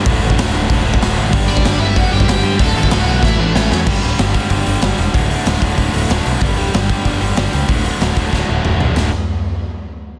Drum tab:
CC |----------------|----------------|----------------|x---------------|
HH |o---o---o---o---|o---o---o---o---|o---o-----------|--o-o-o-o-o-o-o-|
SD |----o-------o---|----o-------o---|----o---o---o-o-|----o-------o---|
T2 |----------------|----------------|----------------|----------------|
FT |----------------|----------------|----------------|----------------|
BD |o--o----o--o----|o--o----o--o----|o--o----o-------|o-----o-o-------|

CC |----------------|----------------|----------------|x---------------|
HH |o-o-o-o-o-o-o-o-|o-o-o-o-o-o-o-o-|o-o-o-o---------|----------------|
SD |----o-------o---|----o-------o---|----o---o-------|o---------------|
T2 |----------------|----------------|------------o---|----------------|
FT |----------------|----------------|--------------o-|----------------|
BD |o-----o-o-------|o-----o-o-------|o-----o-o-------|----------------|